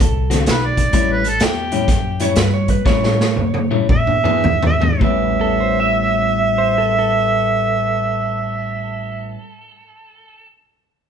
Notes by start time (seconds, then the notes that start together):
0.00 C2 A4, muted clean electric guitar stroke, kick, closed hi-hat
0.30 D3 A3 C4 F#4, snare, closed hi-hat
0.46 B1 B4, muted clean electric guitar stroke, snare, closed hi-hat
0.66 D5
0.77 muted clean electric guitar stroke, kick, closed hi-hat
0.93 A1 A2 G3 C#4 E4, kick, closed hi-hat
1.12 B4
1.24 muted clean electric guitar stroke, closed hi-hat
1.29 A4
1.40 E2, muted clean electric guitar stroke, snare, closed hi-hat
1.44 G4
1.72 A2 G3 C#4 E4, closed hi-hat
1.88 F#2, kick, snare, closed hi-hat
2.20 A2 G3 C#4 E4 C#5, closed hi-hat
2.36 G2 B4, muted clean electric guitar stroke, snare, closed hi-hat
2.54 C#5
2.68 B4, muted clean electric guitar stroke, kick, closed hi-hat
2.85 A2 G3 C#4 E4 C#5, kick, snare
3.04 snare
3.19 muted clean electric guitar stroke, snare
3.36 F#2, muted clean electric guitar stroke, high tom
3.54 high tom
3.71 A2 G3 C#4 E4, mid tom
3.88 E2 E5, muted clean electric guitar stroke, kick, mid tom
4.07 mid tom
4.24 E3 B3 D4 G#4, mid tom
4.43 G#2, muted clean electric guitar stroke, floor tom
4.63 floor tom
4.67 E5
4.81 muted clean electric guitar stroke, floor tom
5.00 A1 A2 G3 B3, kick
5.04 C#4 E5
5.41 A4
5.60 C5
5.80 E5
6.58 C5
6.78 A4
6.99 A4